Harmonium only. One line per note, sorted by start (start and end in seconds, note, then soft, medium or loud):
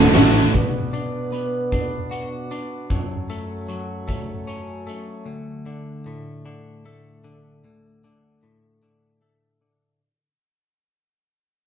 0.00 0.50 F#4 medium
0.00 0.49 A4 medium
0.00 0.51 E5 medium
0.00 0.49 A5 medium
0.53 2.87 B2 soft
0.53 2.87 B3 soft
0.53 2.87 D5 soft
0.53 2.87 F#5 medium
2.90 5.24 F#2 soft
2.90 5.24 F#3 soft
2.90 5.24 A4 soft
2.90 5.24 C#5 medium